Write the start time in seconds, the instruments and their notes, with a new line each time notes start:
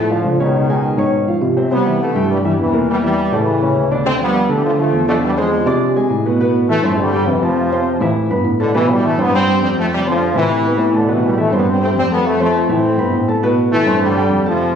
Already playing: tine electric piano A2
0.10 trombone section D3 F3, upright piano F3 F4 F5
0.24 tine electric piano C#2
0.39 trombone section B2 D#3, upright piano C#3 C#4 C#5
0.69 upright piano G#3 G#4 G#5
0.98 tine electric piano G#2, upright piano C#4 C#5 C#6
1.27 upright piano F3 F4 F5
1.41 tine electric piano C3
1.57 upright piano C3 C4 C5
1.71 upright piano C3 C4 C5, trombone section G3 B3
1.86 upright piano E3 E4 E5
2.01 trombone section E3 A3
2.15 tine electric piano G2, upright piano G3 G4 G5
2.30 trombone section E3 G3
2.44 upright piano E3 E4 E5, trombone section E3 G3
2.59 tine electric piano E2, trombone section C3 E3
2.73 upright piano A#2 A#3 A#4
2.89 trombone section E3 G3
3.03 upright piano E3 E4 E5, trombone section E3 G3
3.32 tine electric piano A2, trombone section C#3 E3, upright piano A3 A4 A5
3.61 upright piano C#3 C#4 C#5
3.75 tine electric piano D2
3.91 upright piano D3 D4 D5
4.05 upright piano D3 D4 D5, trombone section A3 C4
4.20 upright piano F3 F4 F5, trombone section G3 B3
4.49 tine electric piano D3, upright piano A3 A4 A5
4.55 trombone section E3 G3
4.64 trombone section D3 F3
4.79 upright piano F3 F4 F5, trombone section F3 A3
4.93 tine electric piano E2
5.08 upright piano D3 D4 D5, trombone section F3 A3
5.23 trombone section E3 G3
5.37 trombone section F3 G#3, upright piano C4 C5 C6
5.66 tine electric piano C3, upright piano D4 D5 D6
5.96 upright piano G#3 G#4 G#5
6.10 tine electric piano A2
6.26 upright piano B2 B3 B4
6.40 upright piano B2 B3 B4
6.69 upright piano E3 E4 E5, trombone section E3 A3
6.83 tine electric piano G2, trombone section F3 A3, upright piano C4 C5 C6
6.99 trombone section D3 G3
7.13 upright piano G3 G4 G5
7.27 tine electric piano F2, trombone section C3 E3
7.42 trombone section C3 F3, upright piano A3 A4 A5
7.72 upright piano C4 C5 C6
8.01 tine electric piano A2, upright piano E3 E4 E5
8.30 tine electric piano G2, upright piano B3 B4 B5
8.45 tine electric piano A2
8.59 trombone section B2 D3, upright piano A3 A4 A5
8.74 upright piano B2 B3 B4, trombone section C3 E3
8.89 trombone section E3 G3
9.03 upright piano E3 E4 E5, trombone section E3 A3
9.18 tine electric piano G2, trombone section G3 B3, upright piano C4 C5 C6
9.34 trombone section G3 C4
9.47 upright piano G3 G4 G5
9.61 tine electric piano F2, trombone section G3 C4
9.77 trombone section F3 A3, upright piano A3 A4 A5
9.92 trombone section C3 G3
10.07 trombone section D3 F3, upright piano C4 C5 C6
10.34 tine electric piano A2, trombone section C3 E3, upright piano E3 E4 E5
10.64 upright piano B3 B4 B5
10.78 tine electric piano A2
10.94 trombone section B2 D3, upright piano A3 A4 A5
11.08 upright piano B2 B3 B4, trombone section C3 E3
11.24 trombone section E3 G3
11.38 upright piano E3 E4 E5, trombone section E3 A3
11.51 tine electric piano G2, trombone section G3 B3, upright piano C4 C5 C6
11.68 trombone section G3 C4
11.81 upright piano G3 G4 G5, trombone section A3 C4
11.95 tine electric piano F2, trombone section G3 C4
12.11 trombone section G3 B3, upright piano A3 A4 A5
12.26 trombone section F3 A3
12.40 trombone section F3 A3, upright piano C4 C5 C6
12.68 tine electric piano A2, upright piano E3 E4 E5, trombone section A3 C4
12.98 tine electric piano G2, upright piano B3 B4 B5
13.13 tine electric piano A2
13.28 upright piano A3 A4 A5
13.43 upright piano B2 B3 B4
13.72 upright piano E3 E4 E5, trombone section E3 A3
13.86 tine electric piano G2, upright piano C4 C5 C6
14.02 trombone section D3 G3
14.16 upright piano G3 G4 G5
14.30 tine electric piano F2
14.45 trombone section C3 F3, upright piano A3 A4 A5